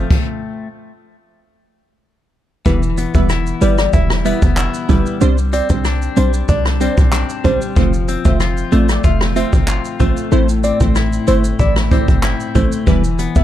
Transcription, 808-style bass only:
2.66 3.06 E1 loud
3.15 3.54 E1 loud
3.62 3.88 G1 medium
3.93 4.34 E1 loud
4.42 4.69 F1 loud
4.89 5.03 G1 medium
5.21 5.62 C2 loud
5.70 6.09 C2 loud
6.17 6.43 B1 medium
6.49 6.89 C2 loud
6.98 7.24 B1 medium
7.45 7.59 C2 loud
7.77 8.17 F1 loud
8.25 8.64 F1 loud
8.72 8.99 A1 medium
9.04 9.45 F1 loud
9.53 9.79 G1 medium
10.00 10.14 A1 medium
10.32 10.72 A1 loud
10.81 11.20 A1 loud
11.28 11.54 G1 medium
11.59 12.00 A1 loud
12.08 12.35 G1 medium
12.55 12.69 A1 medium
12.87 13.28 E1 loud
13.36 13.44 E1 loud

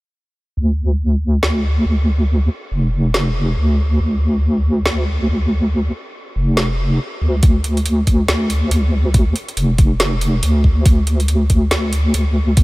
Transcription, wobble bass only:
0.57 1.41 D2 medium
1.43 1.84 D2 medium
1.86 2.49 D2 medium
2.71 3.56 F1 medium
3.57 3.98 D2 medium
4.00 4.84 D2 medium
4.86 5.27 D2 medium
5.28 5.91 D2 medium
6.36 6.99 F1 medium
7.21 7.41 D2 medium
7.43 8.27 D2 medium
8.28 8.70 D2 medium
8.71 9.34 D2 medium
9.57 10.41 F1 medium
10.43 10.84 D2 medium
10.85 11.70 D2 medium
11.71 12.13 D2 medium
12.14 12.63 D2 medium

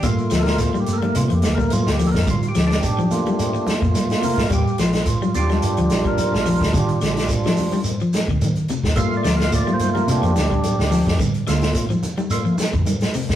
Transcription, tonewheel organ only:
0.03 2.23 A3 medium
0.03 2.23 A#3 soft
0.03 0.60 F4 medium
0.38 0.42 A4 medium
0.43 0.60 A#4 medium
0.61 0.79 F4 medium
0.80 0.97 G4 medium
0.93 0.97 A4 medium
0.97 1.15 A#4 medium
1.16 1.34 F4 medium
1.35 1.53 G4 medium
1.55 1.72 A#4 medium
1.73 1.90 F4 medium
1.92 2.09 G4 medium
2.07 2.10 A4 medium
2.11 2.28 A#4 medium
2.30 2.47 F4 medium
2.49 2.65 G4 medium
2.67 3.73 D4 medium
2.67 3.74 G4 medium
3.11 4.46 A3 medium
3.11 4.47 A#3 medium
3.11 4.47 F4 medium
4.24 4.51 A#4 medium
4.49 4.52 F#4 medium
4.53 4.79 G4 medium
4.81 5.34 F4 medium
5.35 7.00 G3 medium
5.35 7.00 D4 medium
5.35 7.01 F4 medium
5.35 5.49 G4 medium
5.53 6.05 G4 medium
6.07 6.73 A#4 medium
6.76 7.29 G4 medium
7.01 7.81 G3 soft
7.01 7.81 D4 soft
7.01 7.81 F4 medium
8.96 10.07 A3 medium
8.96 10.08 A#3 soft
8.96 10.09 F4 medium
8.96 9.15 F5 medium
9.17 9.34 D5 medium
9.36 9.53 F5 medium
9.55 9.71 D5 medium
9.74 9.90 C5 medium
9.94 10.09 A#4 medium
10.09 10.33 A3 soft
10.09 10.34 A#3 soft
10.09 11.17 D4 medium
10.09 10.34 F4 medium
10.09 11.18 G4 medium
11.47 11.85 A3 medium
11.47 11.85 A#3 soft
11.47 11.86 F4 medium
12.31 12.56 A3 soft
12.31 12.56 A#3 soft
12.31 12.56 F4 soft

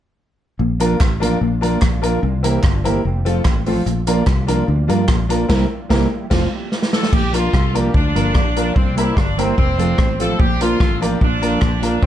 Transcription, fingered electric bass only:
0.59 0.94 A#1 loud
1.01 1.35 A1 medium
1.41 1.76 A#1 medium
1.82 2.17 A#1 medium
2.23 2.58 C2 loud
2.64 2.98 G1 medium
3.05 3.39 F1 medium
3.45 3.80 A1 medium
3.86 4.21 A#1 loud
4.27 4.61 C2 loud
4.68 4.86 D2 loud
4.89 5.06 G2 medium
5.08 5.43 A#1 medium
5.50 5.64 C2 loud
5.91 6.05 C2 medium
6.31 6.45 F1 medium
7.13 7.47 A#1 medium
7.54 7.88 C2 medium
7.94 8.12 D2 medium
8.16 8.32 G1 medium
8.35 8.70 A#1 medium
8.76 9.11 C2 medium
9.17 9.52 G1 medium
9.58 9.93 F1 medium
9.99 10.33 A1 medium
10.39 10.74 A#1 medium
10.80 11.15 A1 medium
11.21 11.56 A#1 loud
11.62 11.97 A#1 loud
12.03 12.06 C2 medium

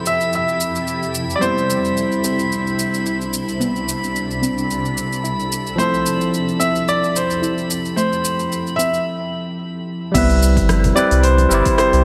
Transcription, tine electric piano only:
0.00 1.38 F3 medium
0.00 1.39 C4 medium
0.00 1.40 E4 medium
0.00 1.41 A4 medium
1.39 5.74 G3 medium
1.39 5.75 C4 medium
1.43 5.76 E4 medium
1.43 5.77 C5 medium
5.76 10.11 F3 medium
5.76 10.12 C4 medium
5.80 10.13 E4 medium
5.80 10.14 A4 medium
10.12 10.92 G3 medium
10.12 10.93 C4 medium
10.16 10.94 E4 medium
10.16 10.95 B4 medium
10.95 11.48 G3 medium
10.95 11.48 C4 medium
10.95 11.49 E4 medium
10.95 11.49 B4 loud
11.49 12.04 G3 medium
11.49 12.04 C4 medium
11.53 12.04 E4 medium
11.53 12.04 D5 loud

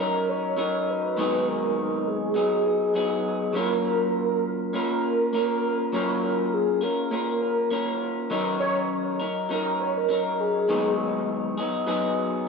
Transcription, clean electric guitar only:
0.00 0.56 F#3 medium
0.00 0.56 C#4 medium
0.00 0.58 D#4 medium
0.00 0.57 A#4 medium
0.57 1.18 F#3 medium
0.57 1.17 C#4 medium
0.57 1.19 D#4 medium
0.57 1.17 A#4 medium
1.17 2.36 G#2 medium
1.17 2.36 D#3 medium
1.17 2.34 F#3 medium
1.17 2.34 B3 medium
1.17 2.35 D#4 medium
1.17 2.35 G#4 medium
2.34 2.94 F#3 medium
2.34 2.94 B3 medium
2.34 2.94 D#4 medium
2.34 2.95 G#4 medium
2.94 3.53 F#3 medium
2.94 3.55 B3 medium
2.94 3.55 D#4 medium
2.94 3.55 G#4 medium
3.53 4.78 F#3 medium
3.53 4.73 A#3 medium
3.53 4.74 C#4 medium
3.53 4.74 F4 medium
3.53 4.75 A#4 medium
4.73 5.33 A#3 medium
4.73 5.34 C#4 medium
4.73 5.33 F4 medium
4.73 5.35 A#4 medium
5.33 5.93 A#3 medium
5.33 5.93 C#4 medium
5.33 5.93 F4 medium
5.33 5.94 A#4 medium
5.93 6.85 F#3 medium
5.93 7.11 A#3 medium
5.93 6.83 C#4 medium
5.93 6.81 F4 medium
5.93 6.81 A#4 medium
6.81 7.10 C#4 soft
6.81 7.11 F4 soft
6.81 7.11 A#4 soft
7.11 7.70 A#3 medium
7.11 7.71 C#4 medium
7.11 7.71 F4 medium
7.11 7.72 A#4 medium
7.71 8.30 A#3 medium
7.71 8.31 C#4 medium
7.71 8.31 F4 medium
7.71 8.31 A#4 medium
8.30 9.24 D#3 medium
8.30 9.49 F#3 medium
8.30 9.20 C#4 medium
8.30 9.20 D#4 medium
8.30 9.18 A#4 medium
9.20 9.49 C#4 soft
9.20 9.50 D#4 soft
9.20 9.49 A#4 soft
9.49 10.08 F#3 medium
9.49 10.08 C#4 medium
9.49 10.10 D#4 medium
9.49 10.10 A#4 medium
10.09 10.69 F#3 medium
10.09 10.69 C#4 medium
10.09 10.69 D#4 medium
10.09 10.69 A#4 medium
10.68 11.58 G#2 medium
10.68 11.58 D#3 medium
10.68 11.59 F#3 medium
10.68 11.58 B3 medium
10.68 11.58 D#4 medium
10.68 11.56 G#4 medium
11.57 11.85 F#3 soft
11.57 11.86 B3 soft
11.57 11.86 D#4 medium
11.57 11.87 G#4 medium
11.87 12.47 F#3 medium
11.87 12.47 B3 medium
11.87 12.47 D#4 medium
11.87 12.47 G#4 medium

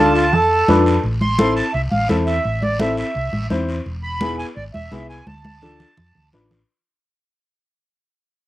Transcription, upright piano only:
0.00 0.22 D4 medium
0.00 0.23 F4 medium
0.00 0.23 A4 medium
0.68 0.93 D4 medium
0.68 0.93 F4 medium
0.68 0.93 B4 medium
1.39 1.63 C4 medium
1.39 1.64 E4 medium
1.39 1.64 A4 medium
2.09 2.34 C4 medium
2.09 2.34 E4 medium
2.09 2.34 A4 medium
2.80 3.04 C4 medium
2.80 3.05 E4 medium
2.80 3.05 A4 medium
3.50 3.75 C4 medium
3.50 3.75 E4 medium
3.50 3.75 C5 medium
4.21 4.46 B3 medium
4.21 4.46 E4 medium
4.21 4.46 G#4 medium
4.91 5.16 B3 medium
4.91 5.17 E4 medium
4.91 5.17 G#4 medium
5.62 5.87 D4 medium
5.62 5.87 F4 medium
5.62 5.87 A4 medium
6.33 6.58 D4 medium
6.33 6.58 F4 medium
6.33 6.58 B4 medium

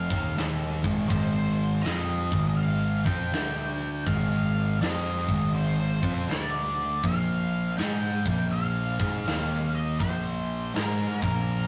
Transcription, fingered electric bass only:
0.11 0.35 D#2 medium
0.37 0.82 D#2 medium
0.84 1.09 G#1 medium
1.11 1.81 G#1 medium
1.85 2.29 F2 medium
2.32 3.02 G#1 loud
3.06 3.31 F2 loud
3.33 4.03 D2 medium
4.06 4.77 G#1 medium
4.81 5.26 F2 medium
5.29 5.99 G#1 medium
6.03 6.28 F2 medium
6.30 7.00 D2 medium
7.04 7.74 A#1 medium
7.79 8.23 G#2 loud
8.26 8.96 A#1 loud
9.00 9.24 G#2 medium
9.26 9.97 D#2 loud
10.01 10.71 A#1 medium
10.75 11.19 G#2 loud
11.23 11.67 A#1 medium

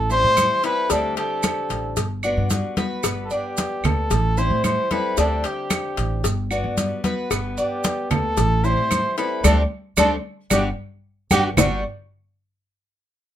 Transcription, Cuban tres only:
0.10 0.62 C5 medium
0.64 0.89 A4 medium
0.90 1.16 D4 medium
1.17 1.69 G4 medium
2.23 2.75 D4 medium
2.77 3.29 B4 medium
3.31 3.82 D4 medium
4.37 4.89 C5 medium
4.91 5.17 A4 medium
5.18 5.44 D4 medium
5.44 5.96 G4 medium
6.51 7.03 D4 medium
7.04 7.56 B4 medium
7.58 8.09 D4 medium
8.64 9.16 C5 medium
9.18 9.44 A4 medium
9.44 9.62 C4 loud
9.44 9.62 D4 loud
9.44 9.62 G4 medium
9.97 10.15 C4 medium
9.97 10.15 D4 medium
9.97 10.15 G4 medium
10.50 10.68 D4 medium
10.50 10.68 F#4 loud
10.50 10.68 G4 medium
11.31 11.48 D4 loud
11.31 11.48 F#4 loud
11.31 11.48 G4 loud
11.57 11.83 G3 medium
11.57 11.83 D4 medium
11.57 11.83 F#4 medium

